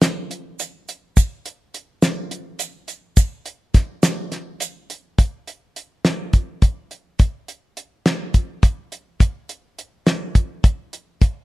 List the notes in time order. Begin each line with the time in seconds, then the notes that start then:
0.02 snare, closed hi-hat, shaker
0.31 closed hi-hat
0.59 closed hi-hat, shaker
0.88 closed hi-hat, shaker
1.17 kick, closed hi-hat, shaker
1.46 closed hi-hat
1.74 closed hi-hat
2.02 snare, closed hi-hat, shaker
2.31 closed hi-hat
2.59 closed hi-hat, shaker
2.88 closed hi-hat, shaker
3.17 kick, closed hi-hat, shaker
3.46 closed hi-hat
3.74 kick, snare, closed hi-hat
4.03 snare, closed hi-hat, shaker
4.32 snare, closed hi-hat
4.60 closed hi-hat, shaker
4.90 closed hi-hat
5.18 kick, closed hi-hat
5.47 closed hi-hat
5.76 closed hi-hat
6.05 snare, closed hi-hat
6.33 kick, closed hi-hat
6.62 kick, closed hi-hat
6.91 closed hi-hat
7.19 kick, closed hi-hat
7.48 closed hi-hat
7.77 closed hi-hat
8.06 snare, closed hi-hat
8.34 kick, closed hi-hat
8.63 kick, closed hi-hat
8.92 closed hi-hat
9.20 kick, closed hi-hat
9.49 closed hi-hat
9.79 closed hi-hat
10.07 snare, closed hi-hat
10.35 kick, closed hi-hat
10.64 kick, closed hi-hat
10.93 closed hi-hat
11.22 kick, closed hi-hat